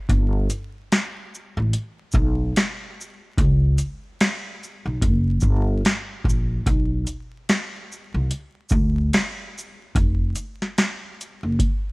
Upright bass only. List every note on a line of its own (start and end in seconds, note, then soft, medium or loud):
0.10 0.46 G1 loud
1.57 1.72 A1 medium
2.14 2.51 B1 loud
3.38 3.75 C#2 loud
4.86 5.04 B1 medium
5.02 5.39 F#1 medium
5.43 5.80 G1 medium
6.25 6.62 A#1 medium
6.67 7.04 B1 loud
8.14 8.30 C2 medium
8.72 9.09 D2 loud
9.96 10.32 F1 loud
11.43 11.58 F#1 medium